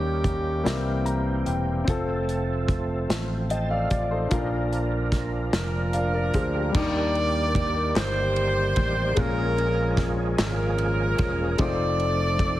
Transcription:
Already playing: D#2 D#3 G3 A#3 C#4 D#4 G4 A#4
0.24 kick, closed hi-hat
0.64 C2 C3 E3 G3 A#3 C4 E4 G4 A#4, snare, closed hi-hat
1.05 A#5, closed hi-hat
1.46 E1 G5, closed hi-hat
1.84 F1 F3 C4 F4 G#4, kick, closed hi-hat
1.89 A3 A4
1.94 A4
2.29 closed hi-hat
2.68 kick, closed hi-hat
3.10 A1, snare, closed hi-hat
3.50 C5 D#5 G5 A5, closed hi-hat
3.70 A4 D5 F5
3.90 A1 F4 D5, kick, closed hi-hat
4.11 D#4 A4 C5
4.29 A#1 A#2 A#3 D4 F4 A#4, kick, closed hi-hat
4.33 F3 A#4
4.73 closed hi-hat
5.12 kick, snare, closed hi-hat
5.53 F1 D4 F4 A#4, snare, closed hi-hat
5.93 D5 F5, closed hi-hat
6.14 A#4 D5
6.34 D2 G#4 C5, kick, closed hi-hat
6.54 G4 A#4
6.71 D#2 D#3 G3 A#3 D4 D5, kick, crash
6.75 D#3 G3 A#3 D#4 G4 A#4 D5
7.15 ride
7.55 kick, ride
7.95 G1 G4 C5, snare, clap, ride
8.36 ride
8.76 A1, kick, ride
9.14 A#1 A#2 F3 G#3 A#3 C#4 G#4, kick, ride
9.18 C#4 F4 G#4 A#4
9.26 A#4
9.58 ride
9.97 kick, snare, ride
10.38 G#1 C#4 F4 A#4, snare, clap, ride
10.78 ride
11.18 E1, kick, ride
11.57 F1 F3 G#3 A3 C4 D#4 A4 D5, kick, ride
11.61 A3 F4 C5
12.00 ride
12.39 kick, ride

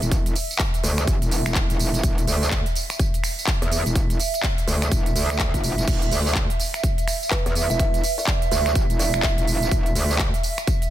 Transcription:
Already playing: E5
0.02 E1, closed hi-hat, tambourine
0.11 kick, closed hi-hat, tambourine
0.26 closed hi-hat, tambourine
0.36 open hi-hat, tambourine
0.51 tambourine
0.59 kick, clap, closed hi-hat, tambourine
0.74 closed hi-hat, tambourine
0.84 D2, open hi-hat, tambourine
0.98 finger snap, closed hi-hat, tambourine
1.07 G1, kick, closed hi-hat, tambourine
1.22 E1, closed hi-hat, tambourine
1.31 open hi-hat, tambourine
1.46 E1, finger snap, tambourine
1.55 kick, clap, closed hi-hat, tambourine
1.70 E1, closed hi-hat, tambourine
1.79 open hi-hat, tambourine
1.94 closed hi-hat, tambourine
2.03 E1, kick, closed hi-hat, tambourine
2.18 closed hi-hat, tambourine
2.27 D2, open hi-hat, tambourine
2.43 tambourine
2.51 kick, clap, closed hi-hat, tambourine
2.66 closed hi-hat, tambourine
2.75 open hi-hat, tambourine
2.90 finger snap, closed hi-hat, tambourine
2.99 kick, closed hi-hat, tambourine
3.14 closed hi-hat, tambourine
3.24 finger snap, open hi-hat, tambourine
3.39 tambourine
3.47 kick, clap, closed hi-hat, tambourine
3.62 E2, closed hi-hat, tambourine
3.72 open hi-hat, tambourine
3.86 E1, closed hi-hat, tambourine
3.95 kick, closed hi-hat, tambourine
4.10 closed hi-hat, tambourine
4.20 open hi-hat, tambourine
4.34 closed hi-hat, tambourine
4.43 kick, clap, closed hi-hat, tambourine
4.58 closed hi-hat, tambourine
4.67 D2, open hi-hat, tambourine
4.82 finger snap, closed hi-hat, tambourine
4.92 E1, kick, closed hi-hat, tambourine
5.06 closed hi-hat, tambourine
5.15 D2, open hi-hat, tambourine
5.30 finger snap, closed hi-hat, tambourine
5.39 kick, clap, closed hi-hat, tambourine
5.54 F1, kick, closed hi-hat, tambourine
5.64 open hi-hat, tambourine
5.78 E1, closed hi-hat, tambourine
5.88 E1, kick, closed hi-hat, tambourine, crash
6.02 closed hi-hat, tambourine
6.11 D2, open hi-hat, tambourine
6.27 tambourine
6.35 kick, clap, closed hi-hat
6.50 closed hi-hat, tambourine
6.60 open hi-hat, tambourine
6.74 finger snap, closed hi-hat, tambourine
6.83 kick, closed hi-hat, tambourine
6.98 closed hi-hat, tambourine
7.08 finger snap, open hi-hat, tambourine
7.23 tambourine
7.31 B4, kick, clap, closed hi-hat, tambourine
7.46 E2, closed hi-hat, tambourine
7.55 open hi-hat, tambourine
7.70 E1 E5, closed hi-hat, tambourine
7.79 E5, kick, closed hi-hat, tambourine
7.94 closed hi-hat, tambourine
8.04 open hi-hat, tambourine
8.18 D5, tambourine
8.27 kick, clap, closed hi-hat, tambourine
8.42 closed hi-hat, tambourine
8.51 D2, open hi-hat, tambourine
8.66 finger snap, closed hi-hat, tambourine
8.75 G1, kick, closed hi-hat, tambourine
8.90 E1, closed hi-hat, tambourine
8.99 D5, open hi-hat, tambourine
9.14 E1, finger snap, closed hi-hat, tambourine
9.23 E5, kick, clap, closed hi-hat, tambourine
9.38 E1, closed hi-hat, tambourine
9.47 open hi-hat, tambourine
9.62 closed hi-hat, tambourine
9.71 E1, kick, closed hi-hat, tambourine
9.86 closed hi-hat, tambourine
9.95 D2, open hi-hat, tambourine
10.11 tambourine
10.19 kick, clap, closed hi-hat, tambourine
10.34 closed hi-hat, tambourine
10.43 open hi-hat, tambourine
10.58 finger snap, closed hi-hat, tambourine
10.67 kick, closed hi-hat, tambourine
10.82 closed hi-hat, tambourine

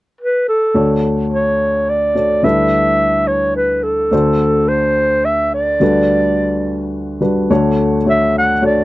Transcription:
0.21 B4
0.48 A4
0.74 D2 D3 A3 D4 F#4 C#5
1.33 C#5
1.89 D5
2.15 A3 D4 F#4 C#5
2.42 D2 D3 G3 D4 E4 B4 E5
3.27 C#5
3.56 B4
3.83 A4
4.11 D2 D3 A3 D4 F#4 C5
4.68 C5
5.25 E5
5.54 D5
5.80 D2 D3 G3 D4 F#4 B4
7.21 G3 D4 F#4 B4
7.50 D2 D3 A3 D4 F#4 C#5
8.06 A3 D4 F#4 C#5 E5
8.38 F#5
8.62 A3 D4 F#4 C#5 D5

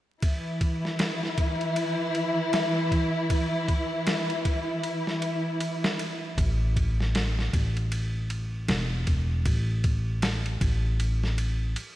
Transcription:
0.22 E3 E4, kick, ride
0.61 kick, ride
0.85 snare
0.99 snare, ride
1.23 snare
1.38 kick, ride
1.61 ride
1.76 ride
2.15 ride
2.53 snare, ride
2.92 kick, ride
3.30 kick, ride
3.68 kick, ride
4.07 snare, ride
4.30 ride
4.45 kick, ride
4.83 ride
5.07 snare
5.22 ride
5.60 ride
5.84 snare
5.99 ride
6.38 A1, kick, ride
6.76 kick, ride
7.00 snare
7.15 snare, ride
7.39 snare
7.53 A1, kick, ride
7.77 ride
7.92 ride
8.30 ride
8.68 E1, snare, ride
9.07 kick, ride
9.46 A1, kick, ride
9.84 kick, ride
10.22 snare, ride
10.46 ride
10.61 A1, kick, ride
11.00 ride
11.24 snare
11.38 ride
11.76 ride

